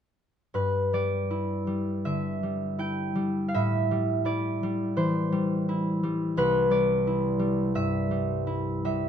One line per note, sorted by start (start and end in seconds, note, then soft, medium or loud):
0.54 3.56 G2 soft
0.54 3.56 B4 medium
0.93 1.66 G3 soft
0.93 3.57 D5 medium
1.30 2.78 E4 soft
1.67 2.42 G3 soft
2.05 3.57 D3 soft
2.05 3.53 E5 medium
2.43 3.14 G3 soft
2.79 4.24 E4 soft
2.79 6.69 G5 medium
3.15 3.90 G3 soft
3.48 3.59 F5 soft
3.54 6.40 A2 medium
3.54 7.44 E5 medium
3.91 4.62 G3 soft
4.25 5.68 E4 soft
4.25 5.45 D5 medium
4.63 5.31 G3 soft
4.96 6.39 E3 soft
4.96 8.87 C5 medium
5.32 6.02 G3 soft
5.69 7.06 E4 soft
6.03 6.70 G3 soft
6.37 9.09 C2 medium
6.37 9.09 B4 medium
6.70 7.38 G3 soft
6.70 8.51 D5 medium
7.07 8.46 E4 soft
7.39 8.10 G3 soft
7.75 9.09 G2 soft
7.75 8.84 E5 medium
8.11 8.83 G3 soft
8.47 9.09 E4 soft
8.85 9.09 G3 soft
8.85 9.09 E5 medium